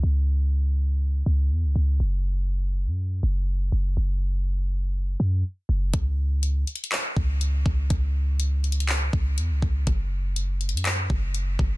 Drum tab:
HH |------------------------|------------------------|------------------------|x-----x--xxxx-----x-----|
CP |------------------------|------------------------|------------------------|------------x-----------|
BD |------------------------|------------------------|------------------------|o--------------o-----o--|

HH |x-----x--xxxx-----x-----|x-----x--xxxx-----x-----|
CP |------------x-----------|------------x-----------|
BD |o--------------o-----o--|o--------------o-----o--|